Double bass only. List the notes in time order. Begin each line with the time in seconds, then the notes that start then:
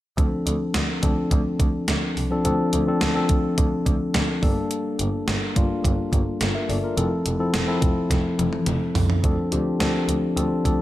0.18 D2
0.46 D2
0.75 D2
1.03 D2
1.31 D2
1.60 D2
1.88 D2
2.17 C2
2.45 D2
2.73 D2
3.02 D2
3.30 D2
3.58 D2
3.86 D2
4.15 D2
4.43 G1
5.00 G1
5.28 G1
5.57 G1
5.85 G1
6.13 G1
6.42 G1
6.70 G1
6.98 F1
7.27 F1
7.55 F1
7.83 F1
8.11 F1
8.39 F1
8.68 F1
8.96 C2
9.24 D2
9.52 D2
9.80 D2
10.09 D2
10.37 D2
10.65 D2